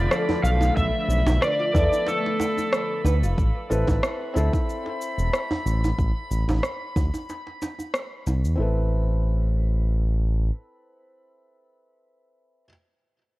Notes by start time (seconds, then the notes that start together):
Already playing: D3 F3 A3 B3 F4 A4 D5 F5 B5
0.11 A4, cross-stick, shaker
0.29 djembe bass
0.44 B1 A3 F5, shaker
0.61 djembe tone, shaker
0.76 B1 E5, kick, shaker
1.08 B1, shaker
1.26 B1, djembe slap, djembe tone, djembe bass, shaker
1.42 B4 D5, cross-stick, shaker
1.59 F4
1.73 E2 B3 A4 E5, kick, djembe bass, shaker
1.77 D5
1.92 djembe tone, shaker
2.06 A3 A4, djembe slap, shaker
2.26 djembe slap
2.39 djembe slap, djembe tone, shaker
2.57 djembe tone, shaker
2.73 cross-stick, shaker
3.05 D2 B4, djembe tone, shaker
3.22 F1 F4, shaker
3.37 A1 B5, kick, shaker
3.70 A1 C4 E4 A4 B4, shaker
3.87 A1, kick, djembe slap, djembe tone, djembe bass, shaker
4.03 cross-stick, shaker
4.34 D2 C4 E4 A4, shaker
4.38 C5
4.53 kick, djembe tone, shaker
4.69 shaker
4.86 djembe slap
5.01 shaker
5.18 E1, shaker
5.33 cross-stick, shaker
5.51 djembe bass
5.66 A1, shaker
5.84 djembe tone, shaker
5.98 A1, kick, shaker
6.31 A1, shaker
6.48 A1, djembe slap, djembe tone, djembe bass, shaker
6.63 cross-stick, shaker
6.96 D2, kick, djembe bass, shaker
7.14 djembe tone, shaker
7.30 djembe slap, shaker
7.47 djembe slap
7.62 djembe slap, djembe tone, shaker
7.79 djembe tone, shaker
7.94 cross-stick, shaker
8.26 C2, djembe tone, shaker
8.44 E2, shaker
8.55 A1 C4 E4
8.60 A4 B4